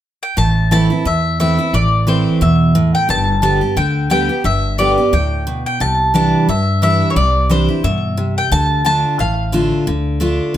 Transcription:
0.23 G5
0.37 A1 A2 A5
0.71 E3 A3 C4 E4 A5
0.90 C4 E4
1.05 E2 E5
1.40 E3 A3 C4 E4 E5
1.59 C4 E4
1.73 A1 A2 D5
2.07 E3 A3 C4 E4 C5
2.41 E2 B2 E5
2.75 A2
2.95 G5
3.09 G1 G2 A5
3.42 D3 G3 B3 G4 A5
3.61 B3 G4
3.76 D2 D3 G5
4.10 D3 G3 B3 G4 G5
4.29 B3 G4
4.44 G1 G2 E5
4.78 D3 G3 B3 G4 D5
4.98 B3 G4
5.12 D2 A2 G5
5.47 B2
5.66 G5
5.80 C2 C3 A5
6.14 E3 G3 D4 E4 A5
6.48 G2 E5
6.82 E3 G3 D4 E4 E5
7.10 C#5
7.16 C2 C3 D5
7.49 E3 G3 D4 E4 C5
7.69 D4 E4
7.84 G2 B2 E5
8.17 C3
8.38 G5
8.51 D2 D3 A5
8.85 D3 A3 D4 F4 A5
9.19 A1 A2 F5
9.52 D3 A3 D4 F4
9.87 D2 D3
10.20 D3 A3 D4 F4
10.54 C3

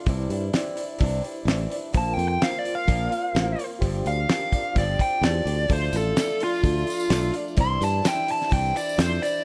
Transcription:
0.06 C2 C3 E3 G3 D4 E4 C5 D5, kick, open hi-hat
0.30 G2 G3 D4 E4, open hi-hat
0.53 E3 G3 D4 E4 C5 D5, snare, open hi-hat
0.76 G3 D4 E4, open hi-hat
0.98 C2 C3 E3 G3 D4 E4, kick, open hi-hat
1.03 C5 D5
1.23 G3 D4 E4, open hi-hat
1.45 A1 E3 G3 D4 E4 C5, snare, open hi-hat
1.49 E4 D5
1.70 G3 D4 E4, open hi-hat
1.93 A#1 A#2 F3 A#3 C4 F4 A#4 C5, kick, open hi-hat
1.97 A5
2.14 F2 C4 F4 G5
2.19 A#3, open hi-hat
2.28 G5
2.40 F3 A#3 F4 A#4 C5 F5, snare, open hi-hat
2.44 C4 F4
2.59 D5
2.64 A#3 C4 F4, open hi-hat
2.75 F5
2.87 A#1 A#2 F3 A#3 C4 F4 A#4 D5, kick, open hi-hat
3.09 A#3 C4 F4, open hi-hat
3.33 A1 F3 A#3 C4 F4 A#4 C5, snare, open hi-hat
3.38 F4
3.56 A#3 C4 F4, open hi-hat
3.79 G1 G2 D3 F4 G4 C5, kick, open hi-hat
3.83 F3 C4 D4 G4
4.04 D2 F3 C4 D4 G4 F5, open hi-hat
4.28 F3 C4 D4 F4 G4 A#4, snare, open hi-hat
4.32 G4
4.52 F3 C4 D4 G4, kick, open hi-hat
4.73 G1 F4 G4 C5, kick, open hi-hat
4.77 G2 D3 F3 C4 D4 G4 D5
4.99 F3 C4 D4 G4 G5, kick, open hi-hat
5.21 E2 F3 C4 D4 F4 G4 C5, snare, open hi-hat
5.25 G4 D5
5.45 D2 F3 C4 D4 G4, open hi-hat
5.68 D2 D3 F3 A3 D4 F4 A4 D5, kick, open hi-hat, tambourine
5.73 C5
5.92 A1 A3 D4 F4, open hi-hat, tambourine
5.97 A4
6.15 D3 A3 D4 F4 A4 D5, snare, open hi-hat, tambourine
6.19 F4
6.40 A3 D4 F4, open hi-hat
6.54 tambourine
6.62 D2 D3 A3 D4 F4 A4 D5, kick, open hi-hat, tambourine
6.77 tambourine
6.87 A3 D4 F4, open hi-hat, tambourine
7.00 tambourine
7.08 B1 D3 A3 F4 A4 D5, snare, open hi-hat
7.12 D4 F4, tambourine
7.34 A3 D4 F4, open hi-hat
7.48 tambourine
7.56 C2 C3 E3 G3 D4 E4 C5 D5, kick, open hi-hat
7.60 C6, tambourine
7.81 G2 G3 D4 E4 A5, open hi-hat, tambourine
8.02 E3 G3 D4 E4 C5 E5, snare, open hi-hat, tambourine
8.08 G5
8.27 G3 D4 E4, open hi-hat
8.31 A5
8.42 snare, tambourine
8.49 C2 C3 E3 G3 D4 E4 C5, kick, open hi-hat
8.53 D5 G5, tambourine
8.66 tambourine
8.74 G3 D4 E4 D5, open hi-hat, tambourine
8.89 tambourine
8.96 F2 E3 G3 D4 E4 C5 D5, snare, open hi-hat, tambourine
9.01 C5
9.21 G3 D4 E4 D5, open hi-hat, tambourine
9.37 tambourine

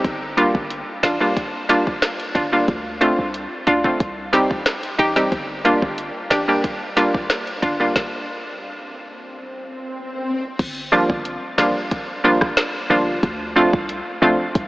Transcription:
0.04 G1, kick, closed hi-hat
0.37 G3 A#3 D4 F4, closed hi-hat
0.55 G1, kick
0.70 closed hi-hat
1.03 A1 D4 F4, snare, closed hi-hat
1.20 G3 A#3 D4 F4
1.37 kick, closed hi-hat
1.69 G3 A#3 D4 F4, snare, closed hi-hat
1.87 kick
2.02 snare, closed hi-hat
2.20 closed hi-hat
2.35 G1 D4 F4, kick, closed hi-hat
2.52 G3 A#3 D4 F4
2.68 D2, kick, closed hi-hat
3.01 A3 C4 D4 F4, closed hi-hat
3.19 C2
3.34 closed hi-hat
3.67 D2 D4 F4, closed hi-hat
3.84 A3 C4 D4 F4, kick
4.00 C2, kick, closed hi-hat
4.33 G3 C4 D#4 G4, snare, closed hi-hat
4.51 kick
4.66 snare, closed hi-hat
4.83 closed hi-hat
4.99 A1 D#4 G4, closed hi-hat
5.16 G3 C4 D#4 G4, snare
5.32 G1, kick, closed hi-hat
5.65 G3 A#3 D4 F4, closed hi-hat
5.82 G1, kick
5.98 closed hi-hat
6.30 A1 D4 G4, snare, closed hi-hat
6.48 G3 A#3 D4 G4
6.64 kick, closed hi-hat
6.97 G3 A#3 D4 F4, snare, closed hi-hat
7.14 kick
7.30 snare, closed hi-hat
7.47 closed hi-hat
7.62 G1 D4 F4, kick, closed hi-hat
7.80 G3 A#3 D4 F4
7.96 kick, snare, swell
10.59 G1, kick, closed hi-hat, crash
10.92 F3 G3 A#3 D4 F4
11.10 G1, kick
11.25 closed hi-hat
11.58 A1 F3 G3 A#3 D4 F4, snare
11.91 kick, closed hi-hat
12.24 F3 G3 A#3 D4 F4
12.41 kick, cross-stick
12.57 snare, closed hi-hat
12.90 G1 F3 G3 A#3 D4 F4
13.23 D2, kick, closed hi-hat
13.56 F3 A3 C4 D4 F4
13.73 C2, kick
13.89 closed hi-hat
14.22 D2 F3 A3 C4 D4 F4
14.55 C2, kick, closed hi-hat

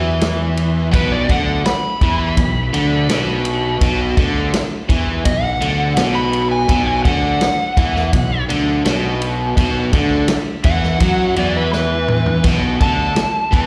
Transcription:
Already playing: E2 E3
0.21 snare, ride
0.57 ride
0.91 B1 B2 B4, kick, ride
1.12 D5
1.29 D2 D3 F#5, kick, ride
1.65 B5, muted overdriven electric guitar stroke, muted fingered electric bass stroke, snare, ride
2.01 E2 E3, kick, ride
2.37 B1 B2, kick, ride
2.73 D2 D3, ride
3.09 B1 B2, snare, ride
3.45 ride
3.81 B1 B2, kick, ride
4.17 D2 D3, kick, ride
4.53 muted fingered electric bass stroke, muted overdriven electric guitar stroke, snare, ride
4.89 E2 E3, kick, ride
5.25 B1 B2 D#5, kick, ride
5.43 F#5
5.60 D2 D3, ride
5.97 B1 B2, snare, ride
6.15 B5
6.33 ride
6.51 G#5
6.69 B1 B2, kick, ride
6.87 G#5
7.05 D2 D3 F#5, kick, ride
7.41 muted fingered electric bass stroke, muted overdriven electric guitar stroke, snare, ride
7.77 E2 E3, kick, ride
7.96 snare
8.13 B1 B2, kick, ride
8.49 D2 D3, ride
8.85 B1 B2, snare, ride
9.22 ride
9.57 B1 B2, kick, ride
9.93 D2 D3, kick, ride
10.28 muted fingered electric bass stroke, muted overdriven electric guitar stroke, snare, ride
10.64 E2 E3 F#5, kick, ride
10.83 snare
11.00 F#2 F#3, kick, ride
11.36 E2 E3 D5, ride
11.57 B4
11.73 B4, snare
12.08 mid tom
12.26 floor tom
12.44 B1 B2, kick, ride, splash
12.80 D2 D3 A5, kick, ride
13.16 muted overdriven electric guitar stroke, muted fingered electric bass stroke, snare, ride
13.52 E2 E3, kick, ride

